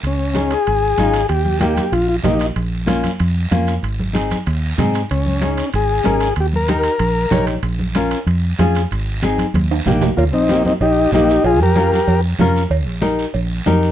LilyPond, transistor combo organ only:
\new Staff \with { instrumentName = "Transistor combo organ" } { \time 4/4 \key ees \mixolydian \tempo 4 = 189 des'4. aes'2~ aes'8 | g'4 g'4 f'8 f'8 ees'8. r16 | r1 | r1 |
des'2 aes'2 | g'8 bes'2. r8 | r1 | r1 |
<bes f'>8 <c' ees'>4 <c' ees'>8 <ees' g'>4 <ees' g'>4 | <f' aes'>8 <g' bes'>2 r4. | r1 | }